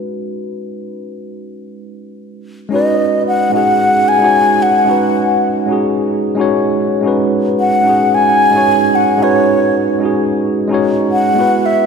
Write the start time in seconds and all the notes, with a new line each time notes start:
Already playing: G#3 C#4 D#4 F#4 B4
2.69 G#3 C#4 D#4
2.73 F#4 B4 D#5
3.28 F#5
3.50 G#3 C#4 D#4
3.54 F#4 G#4 F#5
4.08 G#5
4.19 G#3 C#4 D#4
4.24 F#4 C#5
4.62 F#5
4.85 G#3 C#4 D#4
4.90 F#4 B4
5.66 G#3 C#4 D#4
5.71 F#4 G#4
6.35 G#3 C#4 D#4
6.40 F#4 C#5
7.01 G#3 C#4 D#4
7.06 F#4 B4
7.60 F#5
7.82 G#3 C#4 D#4
7.87 F#4 G#4
8.14 G#5
8.51 G#3 C#4 D#4
8.56 F#4 C#5
8.95 F#5
9.17 G#3 C#4 D#4
9.22 F#4 B4 C#5
9.99 G#3 C#4 D#4
10.04 F#4 G#4
10.68 G#3 C#4 D#4
10.73 F#4 C#5
11.12 F#5
11.34 G#3 B3 E4
11.39 F#4 B4
11.66 E5